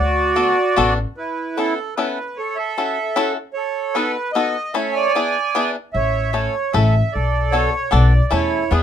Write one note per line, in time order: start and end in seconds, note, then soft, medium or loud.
0.00 0.49 D2 medium
0.00 0.93 F#4 medium
0.00 0.94 D5 loud
0.36 0.57 B3 medium
0.36 0.57 D4 soft
0.36 0.57 F#4 medium
0.36 0.57 A4 medium
0.76 1.04 A1 medium
0.76 0.97 B3 medium
0.76 0.98 D4 medium
0.76 0.98 F#4 medium
0.76 0.98 A4 medium
1.17 1.74 E4 medium
1.17 1.59 B4 medium
1.57 1.78 B3 medium
1.57 1.78 C#4 medium
1.57 1.78 E4 medium
1.57 1.95 A4 loud
1.57 1.78 A4 medium
1.96 2.18 B3 medium
1.96 2.18 C#4 medium
1.96 2.18 E4 medium
1.96 2.18 A4 medium
1.96 2.38 B4 medium
2.37 2.57 A4 medium
2.37 2.58 C#5 medium
2.56 3.33 A4 medium
2.56 3.32 E5 loud
2.78 2.97 C#4 medium
2.78 2.97 E4 soft
2.78 2.98 F#4 soft
2.78 2.98 A4 medium
3.16 3.36 C#4 medium
3.16 3.37 E4 medium
3.16 3.37 F#4 medium
3.16 3.37 A4 medium
3.53 4.12 A4 medium
3.53 3.96 C#5 medium
3.94 4.16 B3 medium
3.94 4.16 D#4 medium
3.94 4.16 F#4 medium
3.94 4.16 A4 medium
3.94 4.32 B4 loud
4.33 4.56 B3 medium
4.33 4.56 D#4 medium
4.33 4.56 F#4 medium
4.33 4.56 A4 medium
4.33 4.75 D#5 loud
4.73 5.07 A3 medium
4.73 5.07 C#4 medium
4.73 5.07 E4 medium
4.73 5.07 A4 medium
4.73 5.12 C#5 medium
4.73 4.95 E5 medium
4.93 5.71 D5 medium
4.93 5.70 G#5 loud
5.15 5.35 B3 medium
5.15 5.35 D4 medium
5.15 5.36 E4 soft
5.15 5.36 G#4 medium
5.55 5.75 B3 medium
5.55 5.75 D4 medium
5.55 5.76 E4 medium
5.55 5.76 G#4 medium
5.93 6.46 A1 medium
5.93 6.31 C#5 medium
5.93 6.35 E5 medium
6.32 6.54 A3 medium
6.32 6.54 C#4 soft
6.32 6.54 E4 medium
6.32 6.54 A4 medium
6.32 6.74 C#5 medium
6.72 7.00 A1 loud
6.72 6.94 A3 medium
6.72 6.94 C#4 medium
6.72 6.94 E4 medium
6.72 6.94 A4 medium
6.72 7.14 E5 medium
7.12 7.66 B1 medium
7.12 7.70 A4 medium
7.12 7.54 D5 medium
7.51 7.73 B3 medium
7.51 7.73 D4 soft
7.51 7.73 F#4 soft
7.51 7.73 A4 medium
7.51 7.93 C#5 loud
7.91 8.18 B1 loud
7.91 8.12 B3 medium
7.91 8.12 D4 medium
7.91 8.12 F#4 medium
7.91 8.12 A4 medium
7.91 8.33 D5 medium
8.31 8.58 E2 medium
8.31 8.63 A3 medium
8.31 8.63 C#4 medium
8.31 8.63 E4 medium
8.31 8.70 E4 medium
8.31 8.63 A4 medium
8.31 8.73 C#5 loud
8.70 8.83 E2 medium
8.70 8.83 B3 medium
8.70 8.83 D4 soft
8.70 8.83 E4 soft
8.70 8.83 G#4 medium
8.70 8.83 B4 medium